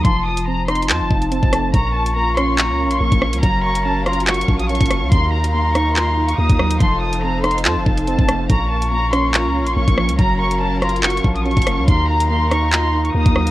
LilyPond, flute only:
\new Staff \with { instrumentName = "Flute" } { \time 4/4 \key bes \minor \tempo 4 = 142 a''4. bes''8 c'''8 a''4. | des'''1 | bes''4. c'''8 des'''8 a''4. | bes''1 |
a''4. bes''8 c'''8 a''4. | des'''1 | bes''4. c'''8 des'''8 a''4. | bes''1 | }